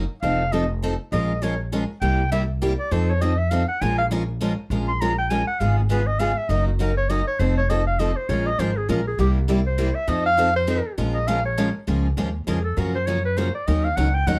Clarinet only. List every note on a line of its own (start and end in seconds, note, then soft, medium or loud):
0.22 0.54 F5 loud
0.52 0.70 D#5 medium
1.13 1.44 D#5 medium
1.42 1.60 C#5 medium
2.02 2.29 G5 loud
2.32 2.42 E5 medium
2.79 2.93 D5 medium
2.92 3.12 C5 medium
3.10 3.23 C#5 loud
3.21 3.40 D#5 medium
3.38 3.52 E5 medium
3.50 3.68 F5 medium
3.68 3.83 F#5 medium
3.81 3.98 G#5 loud
3.98 4.06 F5 loud
4.88 5.02 C6 loud
5.01 5.18 A#5 loud
5.18 5.32 G5 medium
5.30 5.47 G#5 loud
5.47 5.61 F#5 medium
5.60 5.77 F5 medium
5.78 5.91 G#4 medium
5.90 6.08 B4 medium
6.07 6.21 D#5 medium
6.19 6.39 F5 loud
6.37 6.51 E5 medium
6.50 6.66 D#5 medium
6.67 6.82 F#4 medium
6.80 6.97 A#4 medium
6.97 7.11 C#5 medium
7.10 7.27 D#5 medium
7.27 7.41 C#5 medium
7.40 7.57 C5 medium
7.57 7.71 C#5 medium
7.69 7.86 D#5 medium
7.87 8.01 F5 medium
7.99 8.18 D#5 medium
8.16 8.31 C5 medium
8.30 8.48 C#5 medium
8.46 8.61 D#5 loud
8.60 8.78 C5 medium
8.77 8.91 G#4 medium
8.90 9.06 A#4 medium
9.07 9.18 G#4 medium
9.20 9.30 G4 medium
9.67 9.97 C5 medium
9.95 10.10 E5 loud
10.09 10.25 D#5 medium
10.26 10.54 F5 loud
10.56 10.95 C5 loud
11.14 11.29 D#5 loud
11.28 11.45 F5 loud
11.45 11.73 C#5 medium
12.47 12.64 G#4 medium
12.64 12.79 A4 medium
12.77 12.95 A#4 medium
12.95 13.08 C5 medium
13.07 13.24 C#5 medium
13.25 13.39 B4 medium
13.37 13.54 C5 medium
13.54 13.68 D5 medium
13.67 13.86 D#5 medium
13.84 13.98 F5 loud
13.96 14.16 F#5 medium
14.14 14.29 G5 loud
14.27 14.39 F#5 medium